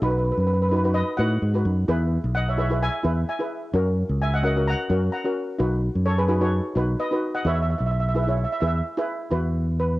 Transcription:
0.02 B1 D#4 F#4 B4
0.10 B4
0.18 B4
0.24 B4
0.32 B4
0.37 F#2 B4
0.47 B4
0.53 B4
0.62 B4
0.69 D#4 F#4 B4
0.73 B4
0.84 D#4 F#4 B4
0.94 B4 D#5
1.17 A2 D#4 F#4 B4 D#5 F#5
1.42 G#2
1.54 D#4 F#4 B4
1.65 F#2
1.88 E2 E4 G#4 B4
2.24 B1
2.35 D#5 F#5
2.49 C#5 E5
2.57 E4 G#4 B4 C#5 E5
2.70 E4 G#4 B4
2.83 E5 G#5
3.03 E2 E4 G#4 B4
3.29 E5 G#5
3.39 E4 G#4 B4
3.74 F#2 C#4 F#4 A#4
4.09 C#2
4.22 E5 G#5
4.34 D#5 F#5
4.43 C#4 F#4 A#4 D#5 F#5
4.56 C#4 F#4 A#4
4.68 F#5 A#5
4.89 F#2 C#4 F#4 A#4
5.12 F#5 A#5
5.24 C#4 F#4 A#4
5.59 B1 D#4 F#4 B4
5.95 F#2
6.06 A4 C#5
6.18 G#4 B4
6.28 D#4 F#4 G#4 B4
6.41 D#4 F#4 A4 B4 C#5
6.75 B1 D#4 F#4 B4
7.00 B4 D#5
7.11 D#4 F#4 B4
7.35 D#5 F#5
7.45 E2 E4 G#4 B4 C#5 E5
7.54 E5
7.62 E5
7.70 E5
7.78 B1 E5
7.86 E5
7.91 E5
8.00 E5
8.09 E5
8.15 E4 G#4 B4 E5
8.23 E5
8.27 E4 G#4 C#5 E5
8.37 E5
8.44 E5
8.52 E5
8.60 E2 E4 G#4 B4 E5
8.67 E5
8.97 E4 G#4 B4
9.31 E2 E4 F#4 B4
9.80 B4

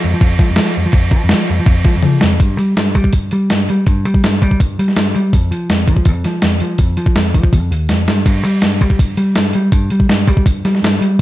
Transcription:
0.03 F2, crash
0.14 F3
0.21 F2, kick, crash
0.39 F3, kick, snare, crash
0.50 F2
0.56 F3, snare, crash
0.74 F2, crash
0.86 F3
0.92 F2, kick, crash
1.11 F3, kick, crash
1.24 F2
1.29 snare, crash
1.33 F3
1.48 F2, crash
1.60 F3
1.66 F2, kick, crash
1.84 F3, kick, snare, crash
1.96 F2
2.03 F3, high tom
2.21 F2, snare
2.31 F2
2.40 G2, kick, open hi-hat
2.59 G3, open hi-hat
2.77 G2, snare, open hi-hat
2.95 G3, kick, open hi-hat
3.04 kick
3.13 G2, kick, open hi-hat
3.31 G3, open hi-hat
3.50 G2, snare, open hi-hat
3.69 G3, open hi-hat
3.86 G2, kick, open hi-hat
4.05 G3, open hi-hat
4.14 kick
4.24 G2, snare, open hi-hat
4.42 G3, kick, open hi-hat
4.51 kick
4.60 G2, kick, open hi-hat
4.79 G3, open hi-hat
4.88 snare
4.96 G2, snare, open hi-hat
5.16 G3, open hi-hat
5.33 F2, kick, open hi-hat
5.51 F3, open hi-hat
5.70 F2, snare, open hi-hat
5.88 F3, kick, open hi-hat
5.96 kick
6.05 F2, kick, open hi-hat
6.24 F3, snare, open hi-hat
6.42 F2, snare, open hi-hat
6.60 F3, open hi-hat
6.78 F2, kick, open hi-hat
6.97 F3, open hi-hat
7.06 kick
7.15 F2, snare, open hi-hat
7.34 F3, kick, open hi-hat
7.43 kick
7.53 F2, kick, open hi-hat
7.71 D#2, open hi-hat
7.89 F2, snare, open hi-hat
8.08 G2, snare, open hi-hat
8.26 G2, kick, open hi-hat, crash
8.45 G3, open hi-hat
8.62 G2, snare, open hi-hat
8.81 G3, kick, open hi-hat
8.90 kick
8.99 G2, kick, open hi-hat
9.17 G3, open hi-hat
9.35 G2, snare, open hi-hat
9.53 G3, open hi-hat
9.72 G2, kick, open hi-hat
9.90 G3, open hi-hat
10.00 kick
10.09 G2, snare, open hi-hat
10.28 G3, kick, open hi-hat
10.37 kick
10.46 G2, kick, open hi-hat
10.65 G3, snare, open hi-hat
10.75 snare
10.82 G2, snare, open hi-hat
11.01 G3, open hi-hat

